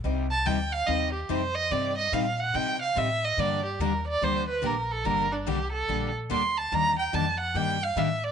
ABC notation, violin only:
X:1
M:4/4
L:1/8
Q:"Swing" 1/4=144
K:Gm
V:1 name="Violin"
z a g f e G c e | d e f ^f g =f =e _e | d G B d c =B _B A | B D G A2 z c' a |
b g a ^f g =f =e d |]